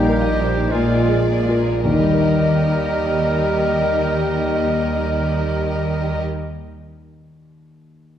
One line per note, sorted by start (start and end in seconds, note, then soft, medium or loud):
0.00 0.59 A#1 soft
0.00 0.60 A#2 soft
0.00 0.68 A#2 soft
0.00 0.21 G3 soft
0.00 0.73 G3 soft
0.00 0.74 G3 soft
0.00 0.75 G3 soft
0.00 0.75 A#3 soft
0.00 0.20 D#4 soft
0.00 0.26 D#4 soft
0.00 0.68 D#4 medium
0.00 0.72 D#4 soft
0.00 0.20 G4 soft
0.00 0.73 G4 soft
0.00 0.20 A#4 soft
0.06 0.59 A#4 soft
0.06 0.20 F5 soft
0.06 0.21 F5 soft
0.21 0.71 G3 soft
0.21 0.71 D#4 soft
0.21 0.71 G4 soft
0.21 0.71 A#4 soft
0.21 0.45 D#5 soft
0.21 0.46 D#5 soft
0.41 0.73 D#4 soft
0.41 0.71 C5 soft
0.70 1.72 A#1 soft
0.70 1.72 A#2 soft
0.70 1.82 A#2 soft
0.70 1.27 F3 soft
0.70 1.32 G#3 soft
0.70 1.31 F4 soft
0.70 1.27 F4 soft
0.70 1.32 F4 soft
0.70 1.27 F4 soft
0.70 1.27 G#4 soft
0.70 1.27 A#4 soft
0.70 1.84 D5 soft
1.08 1.70 G#3 soft
1.28 1.84 F3 soft
1.28 1.84 F4 soft
1.28 1.84 G#4 soft
1.28 1.84 A#4 soft
1.49 1.82 F4 soft
1.49 1.82 A#4 soft
1.83 6.23 D#2 soft
1.83 6.23 D#3 soft
1.83 6.23 G3 soft
1.83 6.23 A#3 soft
1.83 6.24 D#4 soft
1.83 6.23 G4 soft
1.83 6.24 G4 soft
1.83 6.22 A#4 soft
1.83 6.24 A#4 soft
1.83 6.21 D#5 soft
1.83 6.22 D#5 soft
1.87 6.25 G3 soft
1.92 6.30 D#3 soft
1.99 6.37 G3 soft
2.06 6.44 D#4 soft
2.13 6.51 A#4 soft
2.20 6.59 D#5 soft